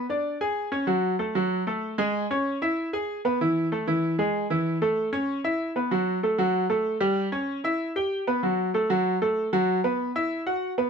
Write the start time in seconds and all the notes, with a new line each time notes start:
0.09 D4 D5
0.41 G#4 G#5
0.72 C#4 C#5
0.87 F#3 F#4
1.19 A3 A4
1.35 F#3 F#4
1.67 A3 A4
1.98 G#3 G#4
2.31 C#4 C#5
2.62 E4 E5
2.93 G#4 G#5
3.25 B3 B4
3.41 E3 E4
3.72 A3 A4
3.87 E3 E4
4.19 G#3 G#4
4.50 E3 E4
4.82 A3 A4
5.13 C#4 C#5
5.44 E4 E5
5.76 B3 B4
5.91 F#3 F#4
6.23 A3 A4
6.38 F#3 F#4
6.70 A3 A4
7.01 G3 G4
7.32 C#4 C#5
7.64 E4 E5
7.96 G4 G5
8.27 B3 B4
8.43 F#3 F#4
8.74 A3 A4
8.90 F#3 F#4
9.22 A3 A4
9.53 F#3 F#4
9.84 B3 B4
10.16 E4 E5
10.47 F#4 F#5
10.78 B3 B4